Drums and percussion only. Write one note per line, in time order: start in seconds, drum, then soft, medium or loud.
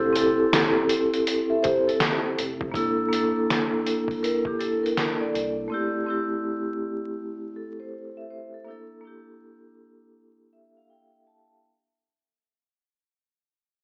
0.16 closed hi-hat medium
0.53 snare loud
0.53 closed hi-hat medium
0.89 closed hi-hat medium
1.14 closed hi-hat soft
1.27 closed hi-hat medium
1.64 kick medium
1.64 closed hi-hat medium
1.89 closed hi-hat soft
2.00 snare loud
2.00 closed hi-hat medium
2.38 closed hi-hat medium
2.61 kick medium
2.74 kick medium
2.74 closed hi-hat medium
3.13 closed hi-hat medium
3.50 snare loud
3.50 closed hi-hat medium
3.86 closed hi-hat medium
4.08 kick medium
4.08 closed hi-hat soft
4.24 closed hi-hat medium
4.45 kick medium
4.61 closed hi-hat medium
4.86 closed hi-hat soft
4.97 snare loud
4.97 closed hi-hat medium
5.35 closed hi-hat medium